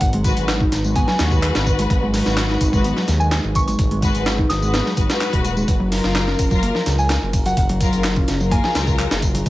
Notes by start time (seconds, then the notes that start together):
Already playing: F#3 G#3 D#4 B4 A#5
0.01 G#1 F#5, kick, closed hi-hat, tambourine
0.13 G#3, closed hi-hat
0.24 G#3 F#4 B4, kick, closed hi-hat, tambourine
0.37 G#1, closed hi-hat, tambourine
0.48 snare, clap, closed hi-hat, tambourine
0.61 D#4, kick
0.72 G#1, snare, closed hi-hat, tambourine
0.84 G#3 F#4 B4, tambourine
0.96 B3 G#5, kick, closed hi-hat, tambourine
1.07 F#3 G#5, snare
1.19 D#2, snare, closed hi-hat, tambourine
1.31 kick, tambourine
1.43 clap, closed hi-hat, tambourine
1.55 G#1, snare, closed hi-hat
1.66 kick, tambourine
1.79 G#3, closed hi-hat, tambourine
1.90 G#1 G#4, kick, closed hi-hat, tambourine
2.03 G#3
2.14 G#3 F#4 B4, snare, open hi-hat, tambourine
2.26 G#1, snare, tambourine
2.37 snare, clap, closed hi-hat, tambourine
2.50 D#4, snare
2.61 G#1, kick, closed hi-hat, tambourine
2.73 G#3 F#4 B4, kick, tambourine
2.84 B3, closed hi-hat, tambourine
2.97 F#3, snare
3.08 D#2, snare, closed hi-hat, tambourine
3.20 G#5, tambourine
3.31 G#5, snare, clap, closed hi-hat, tambourine
3.44 G#1
3.55 C#6, kick, closed hi-hat, tambourine
3.67 G#3 C#6, closed hi-hat, tambourine
3.79 G#1, kick, closed hi-hat, tambourine
3.91 G#3, closed hi-hat
4.02 G#3 F#4 B4, kick, closed hi-hat, tambourine
4.15 G#1, closed hi-hat, tambourine
4.26 snare, clap, closed hi-hat, tambourine
4.38 D#4, kick
4.49 G#1 D#6, snare, closed hi-hat, tambourine
4.62 G#3 F#4 B4, tambourine
4.74 B3, snare, closed hi-hat, tambourine
4.86 F#3, snare
4.97 G#1 G#3 F#4 B4, kick, closed hi-hat, tambourine
5.09 G#3 F#4 B4, snare, closed hi-hat, tambourine
5.21 snare, clap, tambourine
5.33 D#1, kick, closed hi-hat
5.44 closed hi-hat, tambourine
5.57 G#3, tambourine
5.68 F#1 F4 A#4, kick, closed hi-hat, tambourine
5.80 F#3
5.92 F#3 F4 A#4, snare, open hi-hat, ride, tambourine
6.04 F#1, snare, tambourine
6.15 snare, clap, closed hi-hat, tambourine
6.28 C#4, snare
6.39 F#1, kick, closed hi-hat, ride, tambourine
6.51 F#3 F4 A#4, kick, tambourine
6.63 A#3, closed hi-hat, tambourine
6.75 F3, snare
6.86 C#2, snare, closed hi-hat, ride, tambourine
6.98 G#5, tambourine
7.10 G#5, snare, clap, closed hi-hat, tambourine
7.22 F#1
7.33 kick, closed hi-hat, ride, tambourine
7.46 F#3 F#5, closed hi-hat, tambourine
7.57 F#1 G#4 F#5, kick, closed hi-hat, tambourine
7.69 F#3, closed hi-hat
7.81 F#3 F4 A#4, kick, closed hi-hat, ride, tambourine
7.93 F#1, closed hi-hat, tambourine
8.04 snare, clap, closed hi-hat
8.16 C#4, kick, ride
8.28 F#1, snare, closed hi-hat, ride, tambourine
8.40 F#3 F4 A#4, tambourine
8.51 A#3 G#5, kick, closed hi-hat, tambourine
8.64 F3 G#5, snare
8.75 C#2, snare, closed hi-hat, ride, tambourine
8.87 kick, tambourine
8.99 clap, closed hi-hat, tambourine
9.11 F#1, snare, closed hi-hat
9.22 kick, ride, tambourine
9.35 F#3, closed hi-hat, tambourine
9.46 C#2 C#4 B4 D#5 F5, kick